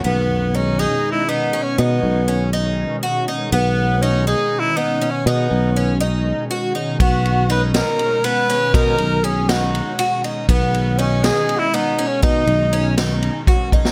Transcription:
0.03 0.85 B1 loud
0.03 3.48 B2 medium
0.03 3.48 D#3 medium
0.03 3.49 G#3 medium
0.03 0.47 B3 medium
0.03 0.57 B3 medium
0.03 3.49 C#4 medium
0.55 0.81 C#4 medium
0.55 0.76 D#4 medium
0.79 1.22 D#4 medium
0.79 1.11 G#4 loud
1.12 1.31 E4 medium
1.29 1.50 B3 medium
1.29 1.64 D#4 medium
1.53 1.75 C#4 medium
1.63 1.81 C#4 medium
1.78 1.99 B2 loud
1.78 2.53 B3 medium
1.78 2.21 D#4 medium
2.03 2.84 B1 medium
2.28 2.49 C#4 medium
2.53 2.96 D#4 medium
3.03 3.24 F#4 medium
3.28 3.49 D#4 medium
3.51 4.33 B1 medium
3.51 6.96 B2 medium
3.51 6.97 D#3 medium
3.51 6.97 G#3 medium
3.51 3.95 B3 medium
3.51 4.04 B3 loud
3.51 6.98 C#4 medium
4.02 4.27 C#4 medium
4.02 4.24 D#4 medium
4.27 4.70 D#4 medium
4.27 4.61 G#4 medium
4.60 4.79 E4 medium
4.77 4.98 B3 medium
4.77 5.12 D#4 medium
5.02 5.23 C#4 medium
5.10 5.26 C#4 medium
5.26 5.46 B2 loud
5.26 5.97 B3 medium
5.26 5.69 D#4 medium
5.51 6.32 B1 medium
5.76 5.98 C#4 medium
6.00 6.43 D#4 medium
6.51 6.72 F#4 medium
6.75 6.97 D#4 medium
6.99 7.81 B1 medium
6.99 10.44 B2 medium
6.99 10.45 D#3 medium
6.99 10.45 G#3 medium
6.99 7.43 B3 medium
6.99 10.46 C#4 medium
6.99 7.47 F#4 medium
6.99 kick loud
6.99 ride medium
7.25 ride medium
7.50 7.71 D#4 medium
7.50 7.62 B4 medium
7.50 ride medium
7.74 8.17 D#4 medium
7.74 8.26 A#4 medium
7.74 8.27 A#4 medium
7.74 snare loud
7.74 ride medium
7.99 ride medium
8.24 8.46 B3 medium
8.24 8.76 B4 medium
8.24 8.76 B4 loud
8.24 ride medium
8.49 8.71 C#4 medium
8.49 snare soft
8.49 ride medium
8.74 8.95 B2 loud
8.74 9.17 D#4 medium
8.74 9.26 A#4 medium
8.74 9.25 A#4 loud
8.74 kick loud
8.74 ride medium
8.98 9.80 B1 medium
8.98 ride medium
9.24 9.46 C#4 medium
9.24 9.50 G#4 medium
9.24 ride medium
9.49 9.92 D#4 medium
9.49 10.24 F#4 medium
9.49 snare loud
9.49 ride medium
9.75 ride medium
9.99 10.20 F#4 medium
9.99 ride medium
10.24 10.45 D#4 medium
10.24 ride medium
10.47 11.30 B1 loud
10.47 13.92 B2 medium
10.47 13.92 D#3 medium
10.47 13.92 G#3 medium
10.47 11.00 B3 medium
10.47 10.92 B3 medium
10.47 11.00 B3 medium
10.47 13.92 C#4 medium
10.47 kick loud
10.47 ride medium
10.74 ride medium
10.99 11.26 C#4 medium
10.99 11.20 D#4 medium
10.99 ride medium
11.24 11.66 D#4 medium
11.24 11.60 G#4 loud
11.24 11.59 G#4 medium
11.24 snare loud
11.24 ride medium
11.49 ride medium
11.57 11.76 E4 medium
11.57 11.76 E4 loud
11.74 11.95 B3 medium
11.74 12.08 D#4 medium
11.74 12.09 D#4 medium
11.74 ride medium
11.99 12.20 C#4 medium
11.99 ride medium
12.07 12.23 C#4 medium
12.07 12.22 C#4 medium
12.22 12.43 B2 loud
12.22 12.93 D#4 medium
12.22 12.65 D#4 medium
12.22 12.94 D#4 medium
12.22 kick loud
12.22 ride medium
12.47 13.28 B1 medium
12.47 ride medium
12.73 12.94 C#4 medium
12.73 ride medium
12.98 13.40 D#4 medium
12.98 snare loud
12.98 ride medium
13.22 ride medium
13.47 13.69 F#4 medium
13.47 kick loud
13.72 13.92 D#4 medium
13.72 kick medium
13.85 snare medium

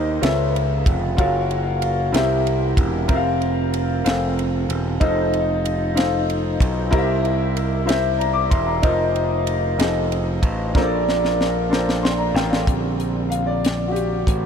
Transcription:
0.00 0.19 D#2 loud
0.00 0.18 D#3 medium
0.00 0.24 D#4 medium
0.00 0.23 G4 medium
0.00 0.24 A#4 medium
0.00 0.23 C5 medium
0.00 0.24 D#5 loud
0.21 0.82 C#2 medium
0.21 1.14 C#3 medium
0.21 1.00 F4 medium
0.21 1.00 A4 medium
0.21 1.00 B4 medium
0.21 1.00 C#5 medium
0.21 1.01 E5 medium
0.21 snare loud
0.21 ride medium
0.56 ride soft
0.86 1.16 F1 medium
0.86 kick loud
0.86 ride medium
1.17 2.10 F#1 loud
1.17 1.96 F4 medium
1.17 1.96 F#4 medium
1.17 1.96 A#4 medium
1.17 1.96 C#5 medium
1.17 1.96 F5 loud
1.17 kick loud
1.17 ride medium
1.51 ride soft
1.82 ride medium
2.12 2.73 C2 medium
2.12 3.05 C3 medium
2.12 2.91 E4 medium
2.12 2.91 G4 medium
2.12 2.92 A#4 medium
2.12 2.92 C5 medium
2.12 2.92 E5 medium
2.12 snare loud
2.12 ride medium
2.47 ride soft
2.77 3.07 E1 medium
2.77 kick medium
2.77 ride medium
3.08 4.01 F1 loud
3.08 3.87 C4 loud
3.08 3.87 F4 medium
3.08 3.87 A#4 medium
3.08 3.87 C5 medium
3.08 3.16 E5 medium
3.08 kick loud
3.08 ride medium
3.16 3.91 F5 loud
3.42 ride soft
3.74 ride medium
4.04 4.65 F1 medium
4.04 4.83 C4 medium
4.04 4.83 F4 medium
4.04 4.83 A4 medium
4.04 4.83 C5 medium
4.04 4.83 F5 medium
4.04 snare loud
4.04 ride medium
4.39 ride soft
4.69 4.98 E1 medium
4.69 ride medium
5.00 6.56 F1 medium
5.00 5.79 D#4 loud
5.00 5.79 F4 medium
5.00 5.79 A4 medium
5.00 5.79 C5 medium
5.00 5.79 D#5 loud
5.00 kick loud
5.00 ride medium
5.33 ride soft
5.65 ride medium
5.95 6.74 D#4 medium
5.95 6.74 F4 medium
5.95 6.74 A4 medium
5.95 6.74 C5 medium
5.95 6.75 F5 medium
5.95 snare loud
5.95 ride medium
6.30 ride soft
6.60 6.90 B1 medium
6.60 kick medium
6.60 ride medium
6.91 8.48 C2 loud
6.91 7.84 C3 medium
6.91 7.70 E4 loud
6.91 7.70 G4 medium
6.91 7.70 A#4 medium
6.91 7.70 C5 medium
6.91 6.99 D#5 medium
6.91 kick loud
6.91 ride medium
6.98 7.73 E5 loud
7.25 ride soft
7.57 ride medium
7.86 8.65 E4 medium
7.86 8.65 G4 medium
7.86 8.65 A#4 medium
7.86 8.66 C5 medium
7.86 8.20 E5 medium
7.86 ride medium
7.90 snare loud
8.18 8.34 D5 medium
8.18 8.34 A#5 medium
8.18 ride soft
8.33 8.50 D6 medium
8.50 8.81 E1 loud
8.50 8.67 E5 medium
8.50 8.66 C6 medium
8.50 kick medium
8.50 ride medium
8.67 8.98 D5 soft
8.67 8.98 A#5 medium
8.82 9.75 F1 medium
8.82 9.61 D#4 loud
8.82 9.61 F4 medium
8.82 9.62 A#4 medium
8.82 9.62 C5 medium
8.82 9.62 D#5 loud
8.82 kick loud
8.82 ride medium
9.16 ride soft
9.47 ride medium
9.78 10.39 F1 loud
9.78 10.57 D#4 medium
9.78 10.57 F4 medium
9.78 9.86 G#4 medium
9.78 10.58 C5 medium
9.78 10.58 D#5 medium
9.78 snare loud
9.78 ride medium
9.85 10.61 A4 medium
10.12 ride soft
10.43 10.72 A1 loud
10.43 kick loud
10.43 ride medium
10.74 12.31 A#1 medium
10.74 11.67 A#2 medium
10.74 11.53 D4 medium
10.74 11.53 F4 medium
10.74 11.53 A4 medium
10.74 11.53 A#4 medium
10.74 10.82 C5 medium
10.74 kick loud
10.74 snare medium
10.82 11.57 D5 loud
11.09 snare medium
11.25 snare medium
11.41 snare medium
11.69 12.49 D4 medium
11.69 12.49 F4 medium
11.69 12.03 A4 medium
11.69 12.03 A#4 medium
11.69 12.03 C5 medium
11.69 snare medium
11.89 snare medium
12.03 12.18 C6 medium
12.03 snare loud
12.18 12.35 D5 medium
12.18 12.34 A#5 medium
12.34 12.64 A1 loud
12.34 12.51 A#4 medium
12.34 12.51 G5 medium
12.34 snare loud
12.50 12.81 A4 soft
12.50 12.81 F5 medium
12.50 snare loud
12.67 14.24 A#1 medium
12.67 13.10 D3 soft
12.67 13.10 G3 soft
12.67 13.10 C4 medium
12.67 kick medium
12.67 closed hi-hat medium
13.00 closed hi-hat soft
13.30 13.47 F5 medium
13.30 closed hi-hat medium
13.47 13.89 D5 medium
13.65 snare loud
13.65 closed hi-hat medium
13.88 13.95 F#4 medium
13.88 14.46 G4 medium
13.96 closed hi-hat soft
14.27 14.46 A1 medium
14.27 kick medium
14.27 closed hi-hat medium

